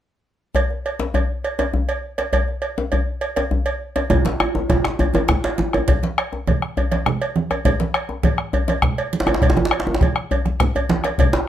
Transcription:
0.55 cowbell medium
0.55 djembe slap soft
0.55 djembe bass medium
0.70 djembe slap soft
0.86 cowbell soft
1.00 djembe slap soft
1.00 djembe tone soft
1.14 cowbell soft
1.14 djembe bass medium
1.44 cowbell soft
1.59 cowbell soft
1.59 djembe slap soft
1.59 djembe tone soft
1.74 djembe bass medium
1.89 cowbell soft
2.18 cowbell soft
2.18 djembe slap soft
2.33 cowbell medium
2.33 djembe slap soft
2.33 djembe bass medium
2.48 djembe slap soft
2.62 cowbell soft
2.78 djembe slap soft
2.78 djembe tone soft
2.92 cowbell soft
2.92 djembe bass medium
3.21 cowbell soft
3.36 cowbell soft
3.36 djembe slap soft
3.36 djembe tone soft
3.51 djembe bass medium
3.66 cowbell soft
3.96 cowbell soft
3.96 djembe slap soft
3.96 djembe tone soft
4.10 bombo low medium
4.10 cowbell medium
4.10 djembe tone medium
4.10 low conga medium
4.10 djembe bass medium
4.25 djembe slap medium
4.25 high conga medium
4.40 bombo rim loud
4.40 cowbell soft
4.40 djembe tone medium
4.55 djembe slap soft
4.55 djembe tone medium
4.70 bombo rim soft
4.70 bombo low medium
4.70 cowbell soft
4.70 djembe slap soft
4.70 high conga medium
4.70 djembe tone loud
4.70 low conga medium
4.84 bombo rim medium
4.84 djembe slap medium
4.99 cowbell soft
4.99 djembe tone medium
4.99 djembe bass medium
5.13 cowbell soft
5.13 djembe slap medium
5.13 high conga medium
5.13 djembe tone medium
5.28 bombo rim medium
5.28 bombo low medium
5.28 djembe tone medium
5.28 low conga medium
5.44 cowbell soft
5.44 djembe slap medium
5.58 high conga medium
5.58 djembe tone medium
5.73 bombo rim medium
5.73 cowbell soft
5.73 djembe tone medium
5.88 bombo low medium
5.88 cowbell soft
5.88 low conga medium
5.88 djembe bass medium
6.03 djembe slap medium
6.03 high conga medium
6.18 bombo rim medium
6.18 cowbell soft
6.33 djembe slap soft
6.33 djembe tone medium
6.47 bombo rim soft
6.47 bombo low medium
6.47 cowbell soft
6.47 djembe slap soft
6.47 high conga medium
6.47 low conga medium
6.62 bombo rim medium
6.77 cowbell soft
6.77 djembe bass medium
6.92 cowbell soft
6.92 djembe slap soft
6.92 high conga medium
6.92 djembe tone soft
7.06 bombo rim medium
7.06 low conga medium
7.22 cowbell soft
7.36 high conga medium
7.51 bombo rim medium
7.51 cowbell soft
7.51 djembe tone soft
7.65 bombo low medium
7.65 cowbell medium
7.65 djembe bass medium
7.65 low conga medium
7.80 djembe slap soft
7.80 high conga medium
7.94 bombo rim medium
7.94 cowbell soft
8.09 djembe slap soft
8.09 djembe tone soft
8.23 bombo rim soft
8.23 bombo low medium
8.23 cowbell soft
8.23 high conga medium
8.23 low conga medium
8.38 bombo rim medium
8.53 cowbell soft
8.53 djembe bass medium
8.68 cowbell soft
8.68 djembe slap soft
8.68 djembe tone soft
8.68 high conga soft
8.82 bombo rim medium
8.82 bombo low medium
8.82 low conga medium
8.98 cowbell soft
9.13 high conga medium
9.20 djembe slap medium
9.27 bombo rim medium
9.27 cowbell soft
9.27 djembe tone medium
9.34 djembe slap medium
9.42 bombo rim soft
9.42 bombo low medium
9.42 cowbell medium
9.42 high conga soft
9.42 low conga medium
9.42 djembe bass medium
9.50 djembe slap medium
9.56 djembe slap soft
9.56 high conga soft
9.56 djembe tone medium
9.65 djembe slap medium
9.71 bombo rim loud
9.71 cowbell soft
9.71 djembe slap soft
9.80 djembe slap medium
9.87 high conga soft
9.87 djembe tone soft
9.87 djembe tone medium
9.94 djembe slap medium
10.01 bombo rim soft
10.01 bombo low medium
10.01 cowbell soft
10.01 high conga medium
10.01 low conga medium
10.16 bombo rim medium
10.16 high conga soft
10.31 cowbell soft
10.31 djembe bass medium
10.45 bombo rim soft
10.45 high conga medium
10.45 djembe bass soft
10.60 bombo rim medium
10.60 bombo low medium
10.60 low conga medium
10.60 djembe bass soft
10.75 cowbell medium
10.75 djembe bass medium
10.89 djembe slap medium
10.89 djembe slap soft
10.89 high conga medium
11.04 bombo rim medium
11.04 cowbell soft
11.04 djembe slap medium
11.04 high conga soft
11.18 bombo low medium
11.18 cowbell medium
11.18 low conga medium
11.18 djembe bass medium
11.33 djembe slap medium
11.33 djembe slap soft

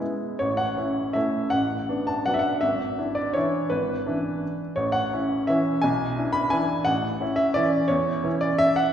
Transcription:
0.00 0.36 G#3 soft
0.00 0.37 B3 soft
0.00 0.37 E4 soft
0.39 0.77 A1 soft
0.39 0.58 C#5 medium
0.57 1.14 F#5 medium
0.77 1.11 C#4 soft
0.77 1.11 E4 soft
1.13 1.48 A3 soft
1.13 1.49 C#4 soft
1.13 1.49 E4 soft
1.13 1.51 E5 medium
1.50 1.88 A1 soft
1.50 2.07 F#5 medium
1.89 2.23 B3 soft
1.89 2.23 D4 soft
2.07 2.26 A5 medium
2.26 2.59 F#3 soft
2.26 2.59 B3 soft
2.26 2.59 D4 soft
2.26 2.33 F#5 medium
2.34 2.41 E5 medium
2.39 2.62 F#5 medium
2.61 2.97 G#1 soft
2.61 3.16 E5 medium
2.98 3.32 D4 soft
2.98 3.32 E4 soft
3.15 3.34 D5 medium
3.33 3.67 E3 soft
3.33 3.68 D4 soft
3.33 3.68 E4 soft
3.33 3.70 C#5 medium
3.70 4.05 G#1 soft
3.70 4.59 B4 medium
4.07 4.74 E3 soft
4.07 4.73 D4 soft
4.07 4.73 E4 soft
4.76 5.11 A1 soft
4.76 4.94 C#5 medium
4.92 5.47 F#5 medium
5.13 5.45 C#4 soft
5.13 5.45 E4 soft
5.47 5.80 E3 soft
5.47 5.80 C#4 soft
5.47 5.80 E4 soft
5.47 5.83 E5 medium
5.82 6.17 B1 soft
5.82 6.34 G#5 medium
6.17 6.49 D4 soft
6.17 6.49 E4 soft
6.33 6.51 B5 medium
6.50 6.84 E3 soft
6.50 6.84 D4 soft
6.50 6.84 E4 soft
6.50 6.86 G#5 medium
6.85 7.20 A1 soft
6.85 7.38 F#5 medium
7.21 7.53 C#4 soft
7.21 7.54 E4 soft
7.36 7.56 E5 medium
7.54 7.87 E3 soft
7.54 7.87 C#4 soft
7.54 7.88 E4 soft
7.54 7.90 D5 medium
7.88 8.24 E2 medium
7.88 8.41 C#5 medium
8.24 8.91 E3 soft
8.24 8.91 C#4 soft
8.24 8.91 E4 soft
8.41 8.60 D5 medium
8.58 8.77 E5 loud
8.76 8.93 F#5 medium

